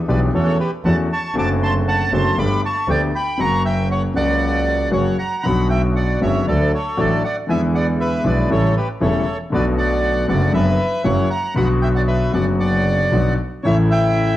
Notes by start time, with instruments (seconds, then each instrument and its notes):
0.07 double bass B1, grand piano B1 B2 E3 B3 D4 G4, bandoneon B4 D5
0.33 grand piano E2 E3 A3 C#4 F#4, double bass E2, bandoneon A4 C#5
0.60 bandoneon G4 B4
0.84 double bass E2, grand piano E2 E3 A3 C#4 F#4, bandoneon F#5 A5
1.13 bandoneon A5 C#6
1.34 double bass F#1, grand piano F#2 D3 F#3 A3 C4
1.38 grand piano F#4, bandoneon A5 D6
1.63 bandoneon A5 C6
1.88 bandoneon F#5 A5
2.10 double bass F#1, grand piano F#2 D3 F#3 A3 C4 F#4, bandoneon C6
2.14 bandoneon A5
2.36 double bass G1, grand piano G1 G2 D3 A3 B3 G4, bandoneon B5 D6
2.65 bandoneon A5 C#6
2.88 double bass D2, grand piano D2 D3 A3 B3 G4, bandoneon D5 G5
3.15 bandoneon G5 B5
3.37 double bass F#1, grand piano F#2 C#3 F#3 A#3, bandoneon A#5 C#6
3.42 grand piano F#4
3.65 bandoneon E5 G5
3.91 bandoneon C#5 F#5
4.14 double bass C#2, grand piano C#2 C#3 F#3 A#3 F#4, bandoneon D5 F#5
4.91 double bass F#1, grand piano F#2 C#3 F#3 A#3 F#4, bandoneon C#5 F#5
5.19 bandoneon F#5 A#5
5.43 double bass B1, grand piano B1 B2 D3 F#3 B3, bandoneon F#5 B5
5.48 grand piano F#4
5.70 bandoneon E5 G5
5.96 bandoneon D5 F#5
6.21 double bass F#1, grand piano F#1 F#2 D3 F#3 B3 F#4, bandoneon C#5 E5
6.47 grand piano D2 D3 F#3 A3 F#4, double bass D2, bandoneon A4 D5
6.75 bandoneon A4 C#5
6.97 grand piano A1 A2 D3 F#3 A3 F#4, double bass A1, bandoneon A4 D5
7.24 bandoneon D5 F#5
7.47 grand piano E2 D3 E3 G#3 B3 E4, double bass E2, bandoneon E5 G#5
7.75 bandoneon D5 F#5
8.00 bandoneon B4 E5
8.24 grand piano B1 B2 D3 G#3 B3 E4, double bass B1, bandoneon B4 D5
8.50 grand piano A1 A2 C#3 G3 A3 E4, double bass A1, bandoneon A4 C#5
8.77 bandoneon G4 B4
9.01 grand piano E1 E2 C#3 G3 A3 E4, double bass E1, bandoneon A4 C#5
9.50 grand piano B1 B2 D3 A3 B3, double bass B1
9.54 grand piano F#4, bandoneon B4 D5
9.78 bandoneon D5 F#5
10.28 grand piano F#1 F#2 D3 A3 B3 F#4, double bass F#1, bandoneon D5 F#5
10.53 double bass F#1, grand piano F#2 D3 F#3 B3 F#4, bandoneon B4 E5
11.04 double bass F#1, grand piano F#2 C#3 F#3 A#3 E4, bandoneon C#5 F#5
11.30 bandoneon F#5 A#5
11.54 grand piano B1 B2 D3 F#3 B3 F#4, double bass B1, bandoneon F#5 B5
11.82 bandoneon E5 G5
11.95 bandoneon D5 F#5
12.07 bandoneon B4 E5
12.32 grand piano F#1 F#2 D3 F#3 B3 F#4, double bass F#1, bandoneon D5 F#5
12.60 bandoneon D5 F#5
13.12 double bass B1, grand piano B1 B2 D3 F#3 B3 F#4
13.63 double bass A1, grand piano A1 A2 C#3 E3 A3 E4, cello E4, bandoneon C#5 E5
13.91 bandoneon E5 G5